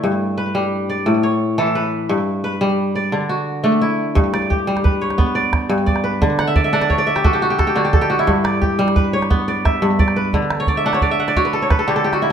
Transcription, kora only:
<<
  \new Staff \with { instrumentName = "Kora" } { \time 12/8 \key g \lydian \tempo 4. = 117 e'8 r8 b'4. d''4 cis''4 a'8 b'4~ | b'8 r8 b'4. d''4 fis'4 d'8 e'4~ | e'8 d''8 g'4 b'8 cis''4 d''4. d''8 b'8~ | b'8 fis''16 e''16 d''16 e''16 fis''16 d''16 cis''16 d''16 e''16 g'16 a'16 g'16 fis'16 g'16 a'16 g'16 fis'16 g'16 a'16 g'16 fis'16 e'16~ |
e'16 r16 d''8 g'4 b'8 cis''4 d''8 e''4 d''8 b'8~ | b'8 r16 cis''16 d''16 e''16 fis''16 cis''16 d''16 e''16 fis''16 d''16 cis''16 b'16 a'16 cis''16 b'16 a'16 g'16 a'16 g'16 fis'16 e'8 | }
  \new Staff \with { instrumentName = "Kora" } { \clef bass \time 12/8 \key g \lydian g,4 r8 g4 r8 a,4 r8 e4 r8 | g,4 r8 g4 r8 d4 r8 a4 r8 | g,4 r8 g4 r8 b4 r8 g,4 r8 | d4 r8 d'4 r8 fis'4 r8 d4 r8 |
g,4 r8 g4 r8 b4 r8 g,4 r8 | d4 r8 d'4 r8 fis'4 r8 d4 r8 | }
>>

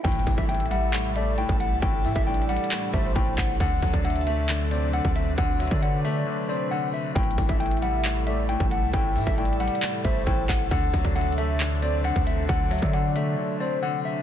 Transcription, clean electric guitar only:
\new Staff \with { instrumentName = "Clean electric guitar" } { \time 4/4 \key a \dorian \tempo 4 = 135 g''8. e''16 g''8 fis''4 e''8 g''8 fis''8 | g''8. e''16 g''8 fis''4 e''8 g''8 fis''8 | fis''8. d''16 fis''8 e''4 d''8 fis''8 e''8 | fis''8. d''16 fis''8 e''4 d''8 fis''8 e''8 |
g''8. e''16 g''8 fis''4 e''8 g''8 fis''8 | g''8. e''16 g''8 fis''4 e''8 g''8 fis''8 | fis''8. d''16 fis''8 e''4 d''8 fis''8 e''8 | fis''8. d''16 fis''8 e''4 d''8 fis''8 e''8 | }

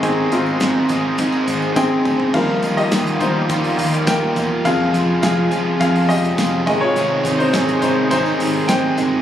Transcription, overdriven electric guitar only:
\new Staff \with { instrumentName = "Overdriven electric guitar" } { \time 4/4 \key aes \major \tempo 4 = 104 <aes, ees aes c' ees' aes'>8 <aes c' ees' aes'>8 <aes, ees aes c' ees' aes'>8 <aes c' ees' aes'>8 <aes c' ees' aes'>8 <aes c' ees' aes'>8 <aes, ees aes c' ees' aes'>8 <aes c' ees' aes'>8 | <ees g bes ees' f'>8 <bes ees' f'>8 <g bes ees' f'>8 <bes ees' f'>8 <ees g bes ees' f'>8 <bes ees' f'>8 <g bes ees' f'>8 <bes ees' f'>8 | <f, c f aes f' aes'>8 <f aes f' aes'>8 <f aes f' aes'>8 <f aes f' aes'>8 <f, c f aes f' aes'>8 <f aes f' aes'>8 <f aes f' aes'>8 <aes c' ees' aes'>8 | <aes, ees aes c' ees' aes'>8 <aes c' ees' aes'>8 <aes c' ees' aes'>8 <aes c' ees' aes'>8 <aes, ees aes c' ees' aes'>8 <aes c' ees' aes'>8 <aes c' ees' aes'>8 <aes c' ees' aes'>8 | }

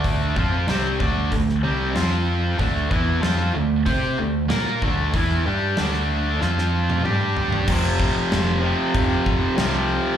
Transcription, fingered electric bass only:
\new Staff \with { instrumentName = "Fingered electric bass" } { \clef bass \time 4/4 \key d \minor \tempo 4 = 94 d,8 f,8 c,8 d,8 r8 c,8 f,4 | d,8 e,8 f,8 d,8 c8 d,8 bes,8 d,8 | e,8 g,8 d,4 f,4 g,4 | f,,4 f,,4 f,,8 f,,8 c,4 | }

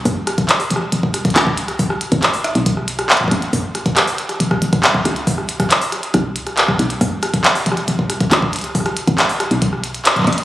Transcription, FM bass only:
\new Staff \with { instrumentName = "FM bass" } { \clef bass \time 4/4 \key cis \phrygian \tempo 4 = 138 fis,,4~ fis,,16 r16 e,,16 r16 e,,4 cis,4~ | cis,8 r16 gis,,8. r16 b,,4 r8. a,,16 r16 | fis,,4~ fis,,16 r8. e,,16 r16 e,,8. r16 cis,8~ | cis,8. r4 r16 b,,8 cis,8. r16 b,,16 r16 |
fis,,4~ fis,,16 r16 e,,16 r16 e,,4 cis,4~ | cis,8 r16 gis,,8. r16 b,,4 r8. a,,16 r16 | }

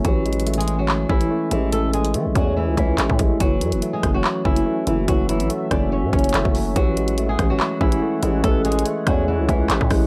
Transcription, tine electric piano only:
\new Staff \with { instrumentName = "Tine electric piano" } { \time 4/4 \key fis \minor \tempo 4 = 143 e8 gis8 a8 cis'4 cis'8 a8 gis8 | e8 gis8 a8 cis'4 cis'8 a8 gis8 | e8 fis8 a8 cis'4 cis'8 a8 fis8 | e8 fis8 a8 cis'4 cis'8 a8 fis8 |
e8 gis8 a8 cis'4 cis'8 a8 gis8 | e8 gis8 a8 cis'4 cis'8 a8 gis8 | }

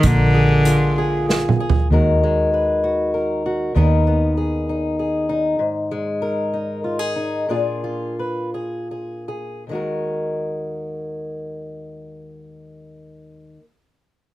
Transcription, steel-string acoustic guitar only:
\new Staff \with { instrumentName = "Steel-string acoustic guitar" } { \time 3/4 \key ees \minor \tempo 4 = 95 << { aes8 aes'8 f'8 aes'8 aes'8 aes'8 | <ees aes ges' bes'>8 aes8 ces''8 ges'8 bes'8 ges'8 | <dis b dis' ais'>8 b8 aes'8 dis'8 aes'8 dis'8 | r8 aes8 bes'8 ees'8 f'16 aes'16 ees'8 |
<d' f' aes'>8 f'8 ces''8 aes'8 aes'8 aes'8 | <ees aes ges' bes'>2.~ | <ees aes ges' bes'>2. | } \\ { bes,2. | ees,2. | dis,2. | aes,2. |
bes,2. | ees,2.~ | ees,2. | } >> }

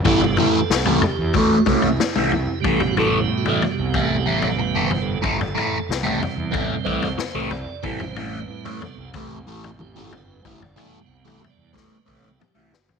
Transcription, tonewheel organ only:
<<
  \new Staff \with { instrumentName = "Tonewheel organ" } { \time 4/4 \key a \dorian \tempo 4 = 92 a'8 b'16 a'8. g'8 fis'8. e'8. e'8 | g'8 fis'16 e'8 fis'8 g'8 a'16 g'16 a'16 b'8 c''16 a'16~ | a'4~ a'16 r8. b'8 c''4 d''8 | c''8 b'4 a'8 r4 \tuplet 3/2 { g'8 a'8 b'8 } |
\tuplet 3/2 { c''8 d''8 e''8 fis''8 e''8 d''8 c''8 b'8 a'8 g'8 fis'8. r16 } | }
  \new Staff \with { instrumentName = "Tonewheel organ" } { \clef bass \time 4/4 \key a \dorian <c g b>8 r2. r8 | <c g b>1 | r4. <c g c'>4. r4 | <c g c' b'>4. <c g b>8 r2 |
r8 <c g b>2 <c g b>8 r4 | }
>>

